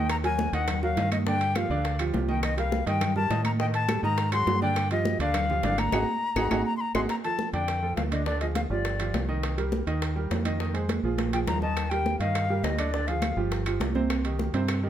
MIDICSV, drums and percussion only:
0, 0, Header, 1, 2, 480
1, 0, Start_track
1, 0, Tempo, 291829
1, 156, Time_signature, 4, 2, 24, 8
1, 24499, End_track
2, 0, Start_track
2, 0, Title_t, "Drums"
2, 156, Note_on_c, 9, 75, 65
2, 157, Note_on_c, 9, 60, 70
2, 158, Note_on_c, 9, 65, 94
2, 321, Note_off_c, 9, 60, 0
2, 321, Note_off_c, 9, 75, 0
2, 322, Note_off_c, 9, 65, 0
2, 392, Note_on_c, 9, 60, 34
2, 398, Note_on_c, 9, 63, 37
2, 398, Note_on_c, 9, 65, 70
2, 557, Note_off_c, 9, 60, 0
2, 562, Note_off_c, 9, 65, 0
2, 563, Note_off_c, 9, 63, 0
2, 635, Note_on_c, 9, 60, 61
2, 639, Note_on_c, 9, 63, 96
2, 643, Note_on_c, 9, 66, 58
2, 800, Note_off_c, 9, 60, 0
2, 804, Note_off_c, 9, 63, 0
2, 808, Note_off_c, 9, 66, 0
2, 878, Note_on_c, 9, 65, 68
2, 882, Note_on_c, 9, 63, 32
2, 1042, Note_off_c, 9, 65, 0
2, 1046, Note_off_c, 9, 63, 0
2, 1113, Note_on_c, 9, 60, 72
2, 1115, Note_on_c, 9, 75, 66
2, 1117, Note_on_c, 9, 65, 94
2, 1125, Note_on_c, 9, 63, 36
2, 1125, Note_on_c, 9, 64, 80
2, 1277, Note_off_c, 9, 60, 0
2, 1280, Note_off_c, 9, 75, 0
2, 1281, Note_off_c, 9, 65, 0
2, 1289, Note_off_c, 9, 63, 0
2, 1289, Note_off_c, 9, 64, 0
2, 1364, Note_on_c, 9, 63, 33
2, 1364, Note_on_c, 9, 64, 68
2, 1528, Note_off_c, 9, 63, 0
2, 1528, Note_off_c, 9, 64, 0
2, 1597, Note_on_c, 9, 60, 33
2, 1597, Note_on_c, 9, 61, 81
2, 1601, Note_on_c, 9, 63, 36
2, 1602, Note_on_c, 9, 65, 71
2, 1602, Note_on_c, 9, 66, 86
2, 1761, Note_off_c, 9, 60, 0
2, 1761, Note_off_c, 9, 61, 0
2, 1766, Note_off_c, 9, 63, 0
2, 1766, Note_off_c, 9, 65, 0
2, 1766, Note_off_c, 9, 66, 0
2, 1835, Note_on_c, 9, 75, 67
2, 1840, Note_on_c, 9, 65, 86
2, 1841, Note_on_c, 9, 63, 81
2, 1843, Note_on_c, 9, 60, 35
2, 2000, Note_off_c, 9, 75, 0
2, 2005, Note_off_c, 9, 63, 0
2, 2005, Note_off_c, 9, 65, 0
2, 2008, Note_off_c, 9, 60, 0
2, 2082, Note_on_c, 9, 60, 71
2, 2084, Note_on_c, 9, 63, 37
2, 2247, Note_off_c, 9, 60, 0
2, 2249, Note_off_c, 9, 63, 0
2, 2318, Note_on_c, 9, 65, 68
2, 2326, Note_on_c, 9, 63, 37
2, 2328, Note_on_c, 9, 60, 36
2, 2483, Note_off_c, 9, 65, 0
2, 2490, Note_off_c, 9, 63, 0
2, 2493, Note_off_c, 9, 60, 0
2, 2554, Note_on_c, 9, 75, 68
2, 2558, Note_on_c, 9, 63, 96
2, 2560, Note_on_c, 9, 65, 94
2, 2560, Note_on_c, 9, 66, 61
2, 2564, Note_on_c, 9, 60, 57
2, 2718, Note_off_c, 9, 75, 0
2, 2723, Note_off_c, 9, 63, 0
2, 2725, Note_off_c, 9, 65, 0
2, 2725, Note_off_c, 9, 66, 0
2, 2728, Note_off_c, 9, 60, 0
2, 2807, Note_on_c, 9, 63, 36
2, 2971, Note_off_c, 9, 63, 0
2, 3038, Note_on_c, 9, 65, 69
2, 3043, Note_on_c, 9, 60, 71
2, 3047, Note_on_c, 9, 63, 37
2, 3203, Note_off_c, 9, 65, 0
2, 3208, Note_off_c, 9, 60, 0
2, 3212, Note_off_c, 9, 63, 0
2, 3274, Note_on_c, 9, 75, 63
2, 3280, Note_on_c, 9, 63, 32
2, 3280, Note_on_c, 9, 65, 95
2, 3438, Note_off_c, 9, 75, 0
2, 3444, Note_off_c, 9, 63, 0
2, 3444, Note_off_c, 9, 65, 0
2, 3515, Note_on_c, 9, 66, 84
2, 3522, Note_on_c, 9, 63, 89
2, 3524, Note_on_c, 9, 60, 34
2, 3524, Note_on_c, 9, 61, 80
2, 3680, Note_off_c, 9, 66, 0
2, 3686, Note_off_c, 9, 63, 0
2, 3689, Note_off_c, 9, 60, 0
2, 3689, Note_off_c, 9, 61, 0
2, 3758, Note_on_c, 9, 63, 72
2, 3763, Note_on_c, 9, 60, 36
2, 3922, Note_off_c, 9, 63, 0
2, 3927, Note_off_c, 9, 60, 0
2, 3995, Note_on_c, 9, 75, 68
2, 3997, Note_on_c, 9, 65, 90
2, 3998, Note_on_c, 9, 60, 75
2, 4159, Note_off_c, 9, 75, 0
2, 4162, Note_off_c, 9, 60, 0
2, 4162, Note_off_c, 9, 65, 0
2, 4235, Note_on_c, 9, 60, 33
2, 4238, Note_on_c, 9, 63, 33
2, 4243, Note_on_c, 9, 65, 67
2, 4399, Note_off_c, 9, 60, 0
2, 4403, Note_off_c, 9, 63, 0
2, 4408, Note_off_c, 9, 65, 0
2, 4477, Note_on_c, 9, 63, 97
2, 4479, Note_on_c, 9, 60, 57
2, 4480, Note_on_c, 9, 66, 60
2, 4641, Note_off_c, 9, 63, 0
2, 4644, Note_off_c, 9, 60, 0
2, 4645, Note_off_c, 9, 66, 0
2, 4719, Note_on_c, 9, 63, 35
2, 4722, Note_on_c, 9, 65, 65
2, 4884, Note_off_c, 9, 63, 0
2, 4887, Note_off_c, 9, 65, 0
2, 4953, Note_on_c, 9, 63, 36
2, 4953, Note_on_c, 9, 64, 86
2, 4956, Note_on_c, 9, 60, 72
2, 4957, Note_on_c, 9, 65, 93
2, 4957, Note_on_c, 9, 75, 61
2, 5117, Note_off_c, 9, 63, 0
2, 5117, Note_off_c, 9, 64, 0
2, 5120, Note_off_c, 9, 60, 0
2, 5121, Note_off_c, 9, 75, 0
2, 5122, Note_off_c, 9, 65, 0
2, 5193, Note_on_c, 9, 63, 34
2, 5193, Note_on_c, 9, 64, 72
2, 5358, Note_off_c, 9, 63, 0
2, 5358, Note_off_c, 9, 64, 0
2, 5432, Note_on_c, 9, 63, 37
2, 5436, Note_on_c, 9, 60, 34
2, 5436, Note_on_c, 9, 61, 80
2, 5437, Note_on_c, 9, 65, 74
2, 5437, Note_on_c, 9, 66, 88
2, 5596, Note_off_c, 9, 63, 0
2, 5600, Note_off_c, 9, 60, 0
2, 5600, Note_off_c, 9, 61, 0
2, 5601, Note_off_c, 9, 65, 0
2, 5601, Note_off_c, 9, 66, 0
2, 5666, Note_on_c, 9, 63, 80
2, 5670, Note_on_c, 9, 65, 86
2, 5671, Note_on_c, 9, 75, 66
2, 5679, Note_on_c, 9, 60, 37
2, 5830, Note_off_c, 9, 63, 0
2, 5835, Note_off_c, 9, 65, 0
2, 5836, Note_off_c, 9, 75, 0
2, 5843, Note_off_c, 9, 60, 0
2, 5913, Note_on_c, 9, 63, 36
2, 5918, Note_on_c, 9, 60, 74
2, 6077, Note_off_c, 9, 63, 0
2, 6082, Note_off_c, 9, 60, 0
2, 6149, Note_on_c, 9, 65, 73
2, 6152, Note_on_c, 9, 60, 35
2, 6314, Note_off_c, 9, 65, 0
2, 6317, Note_off_c, 9, 60, 0
2, 6391, Note_on_c, 9, 65, 94
2, 6391, Note_on_c, 9, 66, 64
2, 6393, Note_on_c, 9, 63, 99
2, 6395, Note_on_c, 9, 60, 61
2, 6396, Note_on_c, 9, 75, 67
2, 6555, Note_off_c, 9, 65, 0
2, 6555, Note_off_c, 9, 66, 0
2, 6557, Note_off_c, 9, 63, 0
2, 6559, Note_off_c, 9, 60, 0
2, 6560, Note_off_c, 9, 75, 0
2, 6636, Note_on_c, 9, 63, 34
2, 6800, Note_off_c, 9, 63, 0
2, 6869, Note_on_c, 9, 65, 66
2, 6874, Note_on_c, 9, 60, 72
2, 6874, Note_on_c, 9, 63, 35
2, 7033, Note_off_c, 9, 65, 0
2, 7038, Note_off_c, 9, 60, 0
2, 7039, Note_off_c, 9, 63, 0
2, 7107, Note_on_c, 9, 65, 100
2, 7114, Note_on_c, 9, 63, 36
2, 7116, Note_on_c, 9, 75, 64
2, 7271, Note_off_c, 9, 65, 0
2, 7279, Note_off_c, 9, 63, 0
2, 7281, Note_off_c, 9, 75, 0
2, 7352, Note_on_c, 9, 63, 86
2, 7352, Note_on_c, 9, 66, 84
2, 7357, Note_on_c, 9, 60, 37
2, 7357, Note_on_c, 9, 61, 86
2, 7517, Note_off_c, 9, 63, 0
2, 7517, Note_off_c, 9, 66, 0
2, 7521, Note_off_c, 9, 60, 0
2, 7521, Note_off_c, 9, 61, 0
2, 7596, Note_on_c, 9, 60, 38
2, 7761, Note_off_c, 9, 60, 0
2, 7832, Note_on_c, 9, 65, 91
2, 7833, Note_on_c, 9, 63, 35
2, 7834, Note_on_c, 9, 60, 69
2, 7842, Note_on_c, 9, 75, 65
2, 7996, Note_off_c, 9, 65, 0
2, 7998, Note_off_c, 9, 60, 0
2, 7998, Note_off_c, 9, 63, 0
2, 8007, Note_off_c, 9, 75, 0
2, 8072, Note_on_c, 9, 60, 36
2, 8072, Note_on_c, 9, 63, 34
2, 8073, Note_on_c, 9, 65, 66
2, 8236, Note_off_c, 9, 60, 0
2, 8236, Note_off_c, 9, 63, 0
2, 8237, Note_off_c, 9, 65, 0
2, 8310, Note_on_c, 9, 60, 62
2, 8313, Note_on_c, 9, 63, 102
2, 8319, Note_on_c, 9, 66, 58
2, 8474, Note_off_c, 9, 60, 0
2, 8477, Note_off_c, 9, 63, 0
2, 8483, Note_off_c, 9, 66, 0
2, 8555, Note_on_c, 9, 65, 73
2, 8558, Note_on_c, 9, 63, 34
2, 8719, Note_off_c, 9, 65, 0
2, 8723, Note_off_c, 9, 63, 0
2, 8786, Note_on_c, 9, 60, 68
2, 8791, Note_on_c, 9, 65, 93
2, 8794, Note_on_c, 9, 63, 37
2, 8794, Note_on_c, 9, 64, 90
2, 8794, Note_on_c, 9, 75, 64
2, 8951, Note_off_c, 9, 60, 0
2, 8955, Note_off_c, 9, 65, 0
2, 8958, Note_off_c, 9, 63, 0
2, 8958, Note_off_c, 9, 64, 0
2, 8959, Note_off_c, 9, 75, 0
2, 9039, Note_on_c, 9, 63, 36
2, 9039, Note_on_c, 9, 64, 76
2, 9204, Note_off_c, 9, 63, 0
2, 9204, Note_off_c, 9, 64, 0
2, 9265, Note_on_c, 9, 60, 37
2, 9265, Note_on_c, 9, 61, 91
2, 9267, Note_on_c, 9, 65, 68
2, 9267, Note_on_c, 9, 66, 91
2, 9279, Note_on_c, 9, 63, 38
2, 9429, Note_off_c, 9, 60, 0
2, 9429, Note_off_c, 9, 61, 0
2, 9431, Note_off_c, 9, 65, 0
2, 9431, Note_off_c, 9, 66, 0
2, 9444, Note_off_c, 9, 63, 0
2, 9507, Note_on_c, 9, 60, 37
2, 9509, Note_on_c, 9, 63, 86
2, 9510, Note_on_c, 9, 65, 91
2, 9516, Note_on_c, 9, 75, 65
2, 9672, Note_off_c, 9, 60, 0
2, 9673, Note_off_c, 9, 63, 0
2, 9674, Note_off_c, 9, 65, 0
2, 9680, Note_off_c, 9, 75, 0
2, 9744, Note_on_c, 9, 60, 101
2, 9748, Note_on_c, 9, 63, 105
2, 9749, Note_on_c, 9, 65, 104
2, 9760, Note_on_c, 9, 75, 94
2, 9908, Note_off_c, 9, 60, 0
2, 9913, Note_off_c, 9, 63, 0
2, 9913, Note_off_c, 9, 65, 0
2, 9924, Note_off_c, 9, 75, 0
2, 10462, Note_on_c, 9, 60, 100
2, 10470, Note_on_c, 9, 63, 101
2, 10470, Note_on_c, 9, 75, 99
2, 10472, Note_on_c, 9, 65, 92
2, 10627, Note_off_c, 9, 60, 0
2, 10635, Note_off_c, 9, 63, 0
2, 10635, Note_off_c, 9, 75, 0
2, 10636, Note_off_c, 9, 65, 0
2, 10706, Note_on_c, 9, 60, 99
2, 10706, Note_on_c, 9, 75, 99
2, 10709, Note_on_c, 9, 63, 101
2, 10714, Note_on_c, 9, 65, 105
2, 10871, Note_off_c, 9, 60, 0
2, 10871, Note_off_c, 9, 75, 0
2, 10873, Note_off_c, 9, 63, 0
2, 10878, Note_off_c, 9, 65, 0
2, 11427, Note_on_c, 9, 75, 94
2, 11428, Note_on_c, 9, 60, 104
2, 11429, Note_on_c, 9, 63, 101
2, 11431, Note_on_c, 9, 65, 102
2, 11592, Note_off_c, 9, 60, 0
2, 11592, Note_off_c, 9, 75, 0
2, 11593, Note_off_c, 9, 63, 0
2, 11596, Note_off_c, 9, 65, 0
2, 11665, Note_on_c, 9, 63, 32
2, 11667, Note_on_c, 9, 60, 65
2, 11675, Note_on_c, 9, 65, 84
2, 11830, Note_off_c, 9, 63, 0
2, 11831, Note_off_c, 9, 60, 0
2, 11840, Note_off_c, 9, 65, 0
2, 11906, Note_on_c, 9, 63, 32
2, 11916, Note_on_c, 9, 65, 61
2, 12071, Note_off_c, 9, 63, 0
2, 12081, Note_off_c, 9, 65, 0
2, 12149, Note_on_c, 9, 63, 89
2, 12152, Note_on_c, 9, 60, 55
2, 12154, Note_on_c, 9, 66, 54
2, 12314, Note_off_c, 9, 63, 0
2, 12316, Note_off_c, 9, 60, 0
2, 12318, Note_off_c, 9, 66, 0
2, 12392, Note_on_c, 9, 63, 32
2, 12395, Note_on_c, 9, 65, 64
2, 12557, Note_off_c, 9, 63, 0
2, 12559, Note_off_c, 9, 65, 0
2, 12633, Note_on_c, 9, 65, 88
2, 12634, Note_on_c, 9, 63, 32
2, 12638, Note_on_c, 9, 60, 67
2, 12798, Note_off_c, 9, 63, 0
2, 12798, Note_off_c, 9, 65, 0
2, 12803, Note_off_c, 9, 60, 0
2, 12873, Note_on_c, 9, 63, 31
2, 13037, Note_off_c, 9, 63, 0
2, 13113, Note_on_c, 9, 63, 83
2, 13114, Note_on_c, 9, 65, 67
2, 13114, Note_on_c, 9, 66, 80
2, 13117, Note_on_c, 9, 60, 65
2, 13117, Note_on_c, 9, 61, 76
2, 13278, Note_off_c, 9, 63, 0
2, 13278, Note_off_c, 9, 65, 0
2, 13278, Note_off_c, 9, 66, 0
2, 13282, Note_off_c, 9, 60, 0
2, 13282, Note_off_c, 9, 61, 0
2, 13352, Note_on_c, 9, 63, 64
2, 13355, Note_on_c, 9, 65, 83
2, 13516, Note_off_c, 9, 63, 0
2, 13519, Note_off_c, 9, 65, 0
2, 13591, Note_on_c, 9, 60, 68
2, 13595, Note_on_c, 9, 63, 32
2, 13755, Note_off_c, 9, 60, 0
2, 13759, Note_off_c, 9, 63, 0
2, 13833, Note_on_c, 9, 65, 66
2, 13835, Note_on_c, 9, 63, 33
2, 13837, Note_on_c, 9, 60, 34
2, 13997, Note_off_c, 9, 65, 0
2, 13999, Note_off_c, 9, 63, 0
2, 14002, Note_off_c, 9, 60, 0
2, 14068, Note_on_c, 9, 65, 88
2, 14068, Note_on_c, 9, 66, 56
2, 14070, Note_on_c, 9, 63, 87
2, 14080, Note_on_c, 9, 60, 54
2, 14233, Note_off_c, 9, 65, 0
2, 14233, Note_off_c, 9, 66, 0
2, 14235, Note_off_c, 9, 63, 0
2, 14245, Note_off_c, 9, 60, 0
2, 14555, Note_on_c, 9, 60, 68
2, 14556, Note_on_c, 9, 65, 68
2, 14557, Note_on_c, 9, 63, 34
2, 14719, Note_off_c, 9, 60, 0
2, 14720, Note_off_c, 9, 65, 0
2, 14722, Note_off_c, 9, 63, 0
2, 14792, Note_on_c, 9, 60, 33
2, 14798, Note_on_c, 9, 65, 91
2, 14800, Note_on_c, 9, 63, 31
2, 14957, Note_off_c, 9, 60, 0
2, 14963, Note_off_c, 9, 65, 0
2, 14964, Note_off_c, 9, 63, 0
2, 15037, Note_on_c, 9, 60, 67
2, 15037, Note_on_c, 9, 61, 78
2, 15040, Note_on_c, 9, 65, 65
2, 15040, Note_on_c, 9, 66, 80
2, 15042, Note_on_c, 9, 63, 77
2, 15201, Note_off_c, 9, 60, 0
2, 15201, Note_off_c, 9, 61, 0
2, 15204, Note_off_c, 9, 65, 0
2, 15204, Note_off_c, 9, 66, 0
2, 15206, Note_off_c, 9, 63, 0
2, 15276, Note_on_c, 9, 60, 35
2, 15441, Note_off_c, 9, 60, 0
2, 15516, Note_on_c, 9, 65, 90
2, 15517, Note_on_c, 9, 63, 33
2, 15519, Note_on_c, 9, 60, 70
2, 15681, Note_off_c, 9, 65, 0
2, 15682, Note_off_c, 9, 63, 0
2, 15683, Note_off_c, 9, 60, 0
2, 15760, Note_on_c, 9, 63, 33
2, 15760, Note_on_c, 9, 65, 64
2, 15924, Note_off_c, 9, 63, 0
2, 15924, Note_off_c, 9, 65, 0
2, 15989, Note_on_c, 9, 63, 90
2, 15999, Note_on_c, 9, 60, 55
2, 15999, Note_on_c, 9, 66, 55
2, 16153, Note_off_c, 9, 63, 0
2, 16164, Note_off_c, 9, 60, 0
2, 16164, Note_off_c, 9, 66, 0
2, 16234, Note_on_c, 9, 63, 32
2, 16239, Note_on_c, 9, 65, 62
2, 16398, Note_off_c, 9, 63, 0
2, 16404, Note_off_c, 9, 65, 0
2, 16482, Note_on_c, 9, 65, 82
2, 16483, Note_on_c, 9, 60, 67
2, 16647, Note_off_c, 9, 60, 0
2, 16647, Note_off_c, 9, 65, 0
2, 16717, Note_on_c, 9, 63, 31
2, 16882, Note_off_c, 9, 63, 0
2, 16953, Note_on_c, 9, 63, 82
2, 16960, Note_on_c, 9, 60, 66
2, 16960, Note_on_c, 9, 61, 83
2, 16963, Note_on_c, 9, 65, 64
2, 16963, Note_on_c, 9, 66, 82
2, 17117, Note_off_c, 9, 63, 0
2, 17125, Note_off_c, 9, 60, 0
2, 17125, Note_off_c, 9, 61, 0
2, 17128, Note_off_c, 9, 65, 0
2, 17128, Note_off_c, 9, 66, 0
2, 17192, Note_on_c, 9, 63, 70
2, 17194, Note_on_c, 9, 65, 90
2, 17356, Note_off_c, 9, 63, 0
2, 17358, Note_off_c, 9, 65, 0
2, 17429, Note_on_c, 9, 63, 31
2, 17439, Note_on_c, 9, 60, 64
2, 17594, Note_off_c, 9, 63, 0
2, 17603, Note_off_c, 9, 60, 0
2, 17675, Note_on_c, 9, 63, 32
2, 17677, Note_on_c, 9, 65, 64
2, 17678, Note_on_c, 9, 60, 33
2, 17839, Note_off_c, 9, 63, 0
2, 17841, Note_off_c, 9, 65, 0
2, 17843, Note_off_c, 9, 60, 0
2, 17908, Note_on_c, 9, 63, 87
2, 17917, Note_on_c, 9, 65, 91
2, 17917, Note_on_c, 9, 66, 58
2, 17921, Note_on_c, 9, 60, 53
2, 18073, Note_off_c, 9, 63, 0
2, 18081, Note_off_c, 9, 65, 0
2, 18081, Note_off_c, 9, 66, 0
2, 18086, Note_off_c, 9, 60, 0
2, 18390, Note_on_c, 9, 63, 95
2, 18395, Note_on_c, 9, 65, 68
2, 18400, Note_on_c, 9, 60, 71
2, 18555, Note_off_c, 9, 63, 0
2, 18560, Note_off_c, 9, 65, 0
2, 18565, Note_off_c, 9, 60, 0
2, 18639, Note_on_c, 9, 65, 90
2, 18641, Note_on_c, 9, 60, 33
2, 18804, Note_off_c, 9, 65, 0
2, 18806, Note_off_c, 9, 60, 0
2, 18871, Note_on_c, 9, 64, 85
2, 18874, Note_on_c, 9, 60, 66
2, 18874, Note_on_c, 9, 61, 82
2, 18881, Note_on_c, 9, 65, 69
2, 18881, Note_on_c, 9, 66, 80
2, 19036, Note_off_c, 9, 64, 0
2, 19039, Note_off_c, 9, 60, 0
2, 19039, Note_off_c, 9, 61, 0
2, 19045, Note_off_c, 9, 65, 0
2, 19045, Note_off_c, 9, 66, 0
2, 19111, Note_on_c, 9, 64, 69
2, 19120, Note_on_c, 9, 60, 33
2, 19276, Note_off_c, 9, 64, 0
2, 19285, Note_off_c, 9, 60, 0
2, 19352, Note_on_c, 9, 75, 61
2, 19355, Note_on_c, 9, 65, 88
2, 19357, Note_on_c, 9, 63, 33
2, 19363, Note_on_c, 9, 60, 66
2, 19516, Note_off_c, 9, 75, 0
2, 19520, Note_off_c, 9, 65, 0
2, 19522, Note_off_c, 9, 63, 0
2, 19527, Note_off_c, 9, 60, 0
2, 19596, Note_on_c, 9, 63, 35
2, 19596, Note_on_c, 9, 65, 66
2, 19760, Note_off_c, 9, 65, 0
2, 19761, Note_off_c, 9, 63, 0
2, 19832, Note_on_c, 9, 63, 91
2, 19838, Note_on_c, 9, 60, 55
2, 19840, Note_on_c, 9, 66, 57
2, 19997, Note_off_c, 9, 63, 0
2, 20003, Note_off_c, 9, 60, 0
2, 20005, Note_off_c, 9, 66, 0
2, 20072, Note_on_c, 9, 63, 33
2, 20075, Note_on_c, 9, 65, 66
2, 20236, Note_off_c, 9, 63, 0
2, 20240, Note_off_c, 9, 65, 0
2, 20314, Note_on_c, 9, 75, 62
2, 20318, Note_on_c, 9, 65, 90
2, 20319, Note_on_c, 9, 63, 31
2, 20320, Note_on_c, 9, 60, 63
2, 20479, Note_off_c, 9, 75, 0
2, 20483, Note_off_c, 9, 63, 0
2, 20483, Note_off_c, 9, 65, 0
2, 20484, Note_off_c, 9, 60, 0
2, 20547, Note_on_c, 9, 63, 31
2, 20711, Note_off_c, 9, 63, 0
2, 20786, Note_on_c, 9, 63, 82
2, 20794, Note_on_c, 9, 65, 71
2, 20794, Note_on_c, 9, 66, 82
2, 20797, Note_on_c, 9, 60, 67
2, 20797, Note_on_c, 9, 61, 82
2, 20950, Note_off_c, 9, 63, 0
2, 20958, Note_off_c, 9, 65, 0
2, 20958, Note_off_c, 9, 66, 0
2, 20961, Note_off_c, 9, 60, 0
2, 20961, Note_off_c, 9, 61, 0
2, 21029, Note_on_c, 9, 65, 90
2, 21035, Note_on_c, 9, 75, 65
2, 21194, Note_off_c, 9, 65, 0
2, 21200, Note_off_c, 9, 75, 0
2, 21269, Note_on_c, 9, 63, 35
2, 21280, Note_on_c, 9, 60, 67
2, 21434, Note_off_c, 9, 63, 0
2, 21445, Note_off_c, 9, 60, 0
2, 21500, Note_on_c, 9, 63, 35
2, 21512, Note_on_c, 9, 65, 62
2, 21514, Note_on_c, 9, 60, 34
2, 21665, Note_off_c, 9, 63, 0
2, 21677, Note_off_c, 9, 65, 0
2, 21679, Note_off_c, 9, 60, 0
2, 21742, Note_on_c, 9, 63, 92
2, 21748, Note_on_c, 9, 65, 89
2, 21748, Note_on_c, 9, 66, 60
2, 21751, Note_on_c, 9, 75, 66
2, 21754, Note_on_c, 9, 60, 56
2, 21906, Note_off_c, 9, 63, 0
2, 21912, Note_off_c, 9, 65, 0
2, 21912, Note_off_c, 9, 66, 0
2, 21915, Note_off_c, 9, 75, 0
2, 21919, Note_off_c, 9, 60, 0
2, 22228, Note_on_c, 9, 63, 33
2, 22231, Note_on_c, 9, 65, 67
2, 22235, Note_on_c, 9, 60, 67
2, 22393, Note_off_c, 9, 63, 0
2, 22396, Note_off_c, 9, 65, 0
2, 22400, Note_off_c, 9, 60, 0
2, 22464, Note_on_c, 9, 63, 33
2, 22471, Note_on_c, 9, 65, 90
2, 22472, Note_on_c, 9, 60, 35
2, 22475, Note_on_c, 9, 75, 64
2, 22628, Note_off_c, 9, 63, 0
2, 22635, Note_off_c, 9, 65, 0
2, 22637, Note_off_c, 9, 60, 0
2, 22639, Note_off_c, 9, 75, 0
2, 22704, Note_on_c, 9, 63, 83
2, 22712, Note_on_c, 9, 65, 65
2, 22712, Note_on_c, 9, 66, 80
2, 22715, Note_on_c, 9, 60, 67
2, 22715, Note_on_c, 9, 61, 80
2, 22868, Note_off_c, 9, 63, 0
2, 22876, Note_off_c, 9, 65, 0
2, 22876, Note_off_c, 9, 66, 0
2, 22880, Note_off_c, 9, 60, 0
2, 22880, Note_off_c, 9, 61, 0
2, 22945, Note_on_c, 9, 63, 66
2, 22961, Note_on_c, 9, 60, 35
2, 23110, Note_off_c, 9, 63, 0
2, 23125, Note_off_c, 9, 60, 0
2, 23192, Note_on_c, 9, 63, 35
2, 23193, Note_on_c, 9, 65, 91
2, 23193, Note_on_c, 9, 75, 62
2, 23195, Note_on_c, 9, 60, 69
2, 23356, Note_off_c, 9, 63, 0
2, 23357, Note_off_c, 9, 65, 0
2, 23357, Note_off_c, 9, 75, 0
2, 23360, Note_off_c, 9, 60, 0
2, 23429, Note_on_c, 9, 63, 33
2, 23434, Note_on_c, 9, 65, 67
2, 23594, Note_off_c, 9, 63, 0
2, 23598, Note_off_c, 9, 65, 0
2, 23673, Note_on_c, 9, 60, 56
2, 23676, Note_on_c, 9, 63, 92
2, 23678, Note_on_c, 9, 66, 59
2, 23838, Note_off_c, 9, 60, 0
2, 23840, Note_off_c, 9, 63, 0
2, 23843, Note_off_c, 9, 66, 0
2, 23914, Note_on_c, 9, 65, 64
2, 23917, Note_on_c, 9, 63, 32
2, 24078, Note_off_c, 9, 65, 0
2, 24081, Note_off_c, 9, 63, 0
2, 24152, Note_on_c, 9, 65, 97
2, 24156, Note_on_c, 9, 60, 68
2, 24161, Note_on_c, 9, 63, 33
2, 24161, Note_on_c, 9, 75, 64
2, 24317, Note_off_c, 9, 65, 0
2, 24321, Note_off_c, 9, 60, 0
2, 24325, Note_off_c, 9, 63, 0
2, 24325, Note_off_c, 9, 75, 0
2, 24400, Note_on_c, 9, 63, 33
2, 24499, Note_off_c, 9, 63, 0
2, 24499, End_track
0, 0, End_of_file